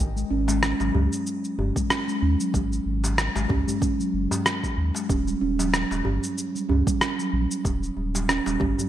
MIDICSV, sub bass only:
0, 0, Header, 1, 2, 480
1, 0, Start_track
1, 0, Tempo, 638298
1, 1911, Time_signature, 4, 2, 24, 8
1, 6685, End_track
2, 0, Start_track
2, 0, Title_t, "Sub bass"
2, 0, Program_c, 0, 38
2, 0, Note_on_c, 0, 32, 92
2, 183, Note_off_c, 0, 32, 0
2, 232, Note_on_c, 0, 32, 85
2, 558, Note_off_c, 0, 32, 0
2, 604, Note_on_c, 0, 32, 89
2, 687, Note_off_c, 0, 32, 0
2, 713, Note_on_c, 0, 37, 99
2, 817, Note_off_c, 0, 37, 0
2, 1190, Note_on_c, 0, 30, 84
2, 1295, Note_off_c, 0, 30, 0
2, 1671, Note_on_c, 0, 39, 92
2, 1776, Note_off_c, 0, 39, 0
2, 1911, Note_on_c, 0, 32, 100
2, 2104, Note_off_c, 0, 32, 0
2, 2149, Note_on_c, 0, 32, 91
2, 2476, Note_off_c, 0, 32, 0
2, 2525, Note_on_c, 0, 32, 92
2, 2607, Note_off_c, 0, 32, 0
2, 2632, Note_on_c, 0, 37, 93
2, 2736, Note_off_c, 0, 37, 0
2, 3110, Note_on_c, 0, 30, 80
2, 3215, Note_off_c, 0, 30, 0
2, 3590, Note_on_c, 0, 39, 93
2, 3695, Note_off_c, 0, 39, 0
2, 3831, Note_on_c, 0, 27, 103
2, 4024, Note_off_c, 0, 27, 0
2, 4072, Note_on_c, 0, 27, 95
2, 4398, Note_off_c, 0, 27, 0
2, 4447, Note_on_c, 0, 27, 82
2, 4528, Note_off_c, 0, 27, 0
2, 4555, Note_on_c, 0, 31, 95
2, 4658, Note_off_c, 0, 31, 0
2, 5033, Note_on_c, 0, 37, 79
2, 5137, Note_off_c, 0, 37, 0
2, 5513, Note_on_c, 0, 34, 95
2, 5616, Note_off_c, 0, 34, 0
2, 5752, Note_on_c, 0, 27, 106
2, 5944, Note_off_c, 0, 27, 0
2, 5991, Note_on_c, 0, 27, 91
2, 6318, Note_off_c, 0, 27, 0
2, 6368, Note_on_c, 0, 27, 93
2, 6449, Note_off_c, 0, 27, 0
2, 6473, Note_on_c, 0, 31, 100
2, 6576, Note_off_c, 0, 31, 0
2, 6685, End_track
0, 0, End_of_file